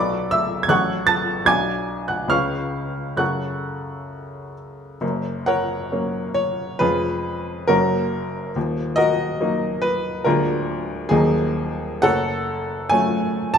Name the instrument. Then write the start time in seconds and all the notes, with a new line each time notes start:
upright piano
Already playing: B1 F#3 B3 A4 D5 B5 D6
0.31 E5 E6
0.63 G#6
0.69 A1 F#3 C#4 A4 F#5 C#6 F#6
1.07 A5 A6
1.45 B1 F#3 D4 F#4 G#5 D6 G#6
2.08 F#5 F#6
2.28 C#2 C#3 C#4 B4 F5 C#6 F6
3.16 F#2 C#3 C#4 A4 F#5 C#6 F#6
5.01 F#1 F#2
5.46 A#4 C#5 F#5
5.92 F#3 A#3 C#4
6.34 C#5
6.79 F1 F2 G#3 C#4 F4 G#4 B4
7.67 F#1 F#2 F#3 A#3 C#4 F#4 A#4
8.56 D#1 D#2
8.96 F#4 A#4 D#5
9.40 F#3 A#3 D#4
9.82 B4
10.24 D1 D2 G#3 A#3 D4 F4 A#4
11.09 D#1 D#2 F#3 A#3 D#4 G#4
12.02 F#1 F#2 A4 C#5 F#5
12.90 F#3 A3 C#4 G#5
13.54 A5